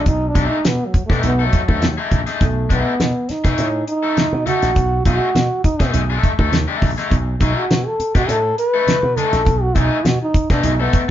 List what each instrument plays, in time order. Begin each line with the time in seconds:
0.06 slap bass B1, trombone D#4, kick, closed hi-hat, muted conga
0.28 trombone D4
0.35 slap bass B1, overdriven electric guitar A3 D#4 G#4, kick, closed hi-hat, muted conga
0.48 trombone D#4
0.65 slap bass B2, trombone B3, snare, closed hi-hat, high conga
0.86 trombone F#3
0.94 muted slap bass stroke, kick, closed hi-hat
1.06 slap bass B2, trombone A3, overdriven electric guitar G#4, kick
1.11 overdriven electric guitar A3 D#4, snare
1.23 slap bass B1, trombone B3, closed hi-hat, muted conga, low conga
1.39 overdriven electric guitar A3 D#4 A4
1.45 trombone F#3
1.53 kick, closed hi-hat, muted conga, low conga
1.68 slap bass D2, overdriven electric guitar A3 D#4 A4, kick
1.82 slap bass D#2, snare, closed hi-hat, high conga
1.98 overdriven electric guitar A3 D#4 G#4
2.11 slap bass A#1, kick, closed hi-hat, high conga
2.26 overdriven electric guitar A3 D#4 G#4, snare, closed hi-hat
2.41 slap bass B1, trombone A3, kick, closed hi-hat, muted conga
2.70 slap bass B1, overdriven electric guitar A3 D#4 G#4, trombone B3, kick, closed hi-hat, muted conga
3.00 slap bass B2, snare, closed hi-hat, high conga
3.29 trombone D#4, muted slap bass stroke, snare, closed hi-hat
3.44 slap bass B2, overdriven electric guitar A3 D#4 G#4, kick, snare, closed hi-hat
3.58 slap bass A2, closed hi-hat, muted conga
3.88 trombone D#4, closed hi-hat
4.03 overdriven electric guitar A3 D#4 A4
4.17 snare, closed hi-hat, high conga
4.33 slap bass B2
4.46 overdriven electric guitar A3 D#4 A4, trombone F#4, closed hi-hat, high conga
4.62 slap bass A#1, snare, closed hi-hat
4.75 slap bass B1, kick, closed hi-hat, muted conga
5.05 slap bass B1, overdriven electric guitar A3 D#4 G#4, trombone F#4, kick, closed hi-hat, muted conga
5.35 slap bass B2, snare, closed hi-hat, high conga
5.64 trombone D#4, muted slap bass stroke, kick, closed hi-hat
5.80 slap bass B2, overdriven electric guitar A3 D#4 G#4, kick, snare, closed hi-hat
5.94 slap bass B1, closed hi-hat, muted conga, low conga
6.10 overdriven electric guitar A3 D#4 A4
6.23 kick, closed hi-hat, low conga
6.39 slap bass D2, overdriven electric guitar A3 D#4 A4, kick
6.52 slap bass D#2, snare, closed hi-hat, high conga
6.68 overdriven electric guitar A3 D#4 G#4
6.81 slap bass A#1, kick, open hi-hat, high conga
6.98 overdriven electric guitar A3 D#4 G#4, snare, closed hi-hat
7.10 slap bass B1, kick, closed hi-hat, muted conga
7.40 slap bass B1, overdriven electric guitar A3 D#4 G#4, trombone D#4, kick, closed hi-hat, muted conga
7.57 trombone F#4
7.71 slap bass B2, snare, closed hi-hat, high conga
7.86 trombone A4
7.99 muted slap bass stroke, closed hi-hat
8.15 slap bass B2, overdriven electric guitar A3 D#4 G#4, trombone F#4, kick, snare, closed hi-hat
8.28 slap bass A2, trombone A4, closed hi-hat, muted conga
8.58 trombone B4, closed hi-hat
8.74 overdriven electric guitar A3 D#4 A4
8.87 snare, closed hi-hat, high conga
9.03 slap bass B2
9.16 overdriven electric guitar A3 D#4 A4, trombone A4, closed hi-hat, high conga
9.33 slap bass A#1, snare, closed hi-hat
9.45 slap bass B1, kick, closed hi-hat, muted conga
9.62 trombone F#4
9.75 slap bass B1, overdriven electric guitar A3 D#4 G#4, trombone D#4, kick, closed hi-hat, muted conga
10.05 slap bass B2, trombone F#4, snare, closed hi-hat, high conga
10.22 trombone D#4
10.34 muted slap bass stroke, kick, closed hi-hat
10.50 slap bass B2, overdriven electric guitar A3 D#4 G#4, trombone D4, kick, snare, closed hi-hat
10.63 slap bass B1, trombone D#4, closed hi-hat, muted conga, low conga
10.80 overdriven electric guitar A3 D#4 A4, trombone B3
10.93 kick, closed hi-hat, muted conga, low conga